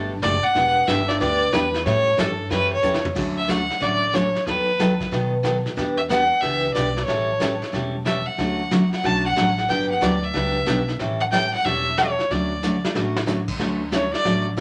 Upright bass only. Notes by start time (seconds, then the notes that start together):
Already playing: G1
0.23 F#1
0.45 muted upright bass stroke
0.55 E1
0.88 G1
1.21 D2
1.53 E2
1.86 A2
2.18 G2
2.51 F#2
2.83 E2
3.16 D2
3.82 A1
4.47 D#2
5.12 B2
5.77 E2
6.43 C#2
6.75 B1
7.08 A1
7.73 E1
8.38 D2
9.04 B1
9.37 A1
9.69 G1
10.02 D2
10.35 C#2
10.67 B1
11.00 A1
11.65 E1
12.31 D2
12.95 A1
13.60 D2
14.25 A1